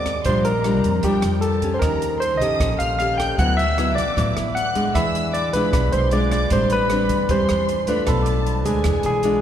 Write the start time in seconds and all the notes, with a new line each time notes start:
Already playing: D#2 G#3 C4 F#4 A#4 D5 D6
0.06 kick, cross-stick, closed hi-hat
0.24 A#1 A#2 G3 D4 C5 C6, kick, closed hi-hat
0.28 F4
0.43 A#4 A#5, closed hi-hat
0.64 G3 D4 F4, cross-stick, closed hi-hat
0.84 F2, kick, closed hi-hat
1.02 F3 G3 D4 F4 G4 G5, kick, closed hi-hat
1.22 F2, cross-stick, closed hi-hat
1.41 A4 A5, closed hi-hat
1.62 C#4 G4, kick, closed hi-hat
1.74 C5 C6
1.79 D#2 D#3 A#4 D#5 A#5, kick, cross-stick, closed hi-hat
2.02 closed hi-hat
2.19 C5 C6, closed hi-hat
2.38 A#1 D#5 D#6, kick
2.42 C#4 G4 A4, closed hi-hat
2.60 A#1 A#2, kick, cross-stick, closed hi-hat
2.79 A#1 F5 F6, closed hi-hat
2.96 C#4 G4 A4 F5 F6, closed hi-hat
3.15 G5 G6, kick
3.20 cross-stick, closed hi-hat
3.37 D2 D3 F#3 B3 E4 F#5 F#6, kick, closed hi-hat
3.57 E5 E6, closed hi-hat
3.78 F#3 B3 E4 E5, cross-stick, closed hi-hat
3.94 A1 D5 D6, kick
3.98 closed hi-hat
4.17 A1 A2 F#3 B3 E4, kick, closed hi-hat
4.37 A1, cross-stick, closed hi-hat
4.54 F#5 F#6, closed hi-hat
4.75 G#3 D4, kick, closed hi-hat
4.94 E2 E3 E5 B5 E6, kick, cross-stick, closed hi-hat
5.15 closed hi-hat
5.33 D5 D6, closed hi-hat
5.52 B1 G#3 D4 F4 B4 B5, kick, closed hi-hat
5.73 B1 B2, kick, cross-stick, closed hi-hat
5.92 B1 C5 C6, closed hi-hat
6.11 G#3 D4 F4 D5 D6, closed hi-hat
6.31 D5 D6, kick, cross-stick, closed hi-hat
6.50 A1 A2 G3 C4 D4 C5 C6, kick, closed hi-hat
6.69 B4 B5, closed hi-hat
6.90 G3 C4 D4, cross-stick, closed hi-hat
7.09 E2, kick, closed hi-hat
7.28 E2 E3 G3 C4 D4 C5 C6, kick, closed hi-hat
7.49 E2, cross-stick, closed hi-hat
7.69 closed hi-hat
7.87 A3 D4 F4 B4 B5, kick, closed hi-hat
8.05 B1 B2 A4 A5 B5, kick, cross-stick, closed hi-hat
8.22 D6, closed hi-hat
8.46 closed hi-hat
8.65 D2 G#3 D4 G#4 G#5, kick, closed hi-hat
8.84 E2 E3, kick, cross-stick, closed hi-hat
9.03 B1 G#4, closed hi-hat
9.23 G#3 D4 F4, closed hi-hat